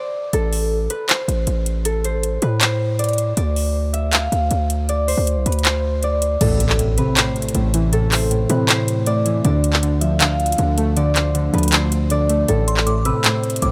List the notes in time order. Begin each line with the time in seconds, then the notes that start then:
Already playing: C5 D5
0.33 A1 A4, closed hi-hat
0.53 open hi-hat
0.90 B4, closed hi-hat
1.09 C5, clap, closed hi-hat
1.28 A1, closed hi-hat
1.47 A1, closed hi-hat
1.66 closed hi-hat
1.85 A4, closed hi-hat
2.04 C5, closed hi-hat
2.23 closed hi-hat
2.42 A2 B4, closed hi-hat
2.61 C5, clap, closed hi-hat
2.99 D5, closed hi-hat
3.04 closed hi-hat
3.09 closed hi-hat
3.13 closed hi-hat
3.18 closed hi-hat
3.37 D2 D5, closed hi-hat
3.56 open hi-hat
3.93 E5, closed hi-hat
4.13 F5, clap, closed hi-hat
4.32 D2, closed hi-hat
4.51 D2, closed hi-hat
4.70 closed hi-hat
4.89 D5, closed hi-hat
5.08 C5, open hi-hat
5.18 D2
5.27 closed hi-hat
5.36 C2
5.46 D2 B4, closed hi-hat
5.52 closed hi-hat
5.59 closed hi-hat
5.65 C5, clap, closed hi-hat
6.03 D5, closed hi-hat
6.22 closed hi-hat
6.41 A1 A2 A4, closed hi-hat, crash, impact
6.60 closed hi-hat
6.69 clap
6.79 A2, closed hi-hat
6.98 C3 B4, closed hi-hat
7.16 A2 C5, clap, closed hi-hat
7.36 closed hi-hat
7.42 closed hi-hat
7.49 closed hi-hat
7.55 A1 A2, closed hi-hat
7.74 E3, closed hi-hat
7.92 A2 A4, closed hi-hat
8.12 C5, clap, open hi-hat
8.31 A2, closed hi-hat
8.50 A2 C3 B4, closed hi-hat
8.68 A2 C5, clap, closed hi-hat
8.88 closed hi-hat
9.06 A2 D5, closed hi-hat
9.26 E3, closed hi-hat
9.45 D2 D3 D5, closed hi-hat
9.64 closed hi-hat
9.73 clap
9.83 D3, closed hi-hat
10.01 F3 E5, closed hi-hat
10.20 D3 F5, clap, closed hi-hat
10.40 closed hi-hat
10.46 closed hi-hat
10.52 closed hi-hat
10.58 D2 D3, closed hi-hat
10.78 A3, closed hi-hat
10.97 D3 D5, closed hi-hat
11.15 C5, clap, closed hi-hat
11.35 D3, closed hi-hat
11.53 D2 F3 B4, closed hi-hat
11.58 closed hi-hat
11.63 closed hi-hat
11.68 closed hi-hat
11.72 D3 C5, clap, closed hi-hat
11.92 closed hi-hat
12.10 D3 D5, closed hi-hat
12.29 A3, closed hi-hat
12.48 A1 A2 A4, closed hi-hat
12.68 C6, closed hi-hat
12.77 clap
12.86 A2 D6, closed hi-hat
13.05 C3 B4 E6, closed hi-hat
13.24 A2 C5, clap, closed hi-hat
13.44 closed hi-hat
13.50 closed hi-hat
13.56 closed hi-hat
13.62 A1 A2 D6, closed hi-hat